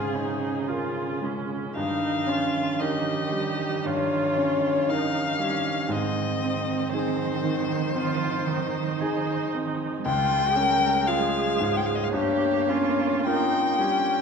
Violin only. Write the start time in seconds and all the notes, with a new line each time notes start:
Already playing: G#4
1.76 F5
2.80 D#5
3.85 C#5
4.89 F5
5.91 D#5
6.94 C5
10.06 G5
11.07 F5
11.76 G5
11.85 F5
11.95 D#5
12.04 F5
12.12 C#5
13.25 G5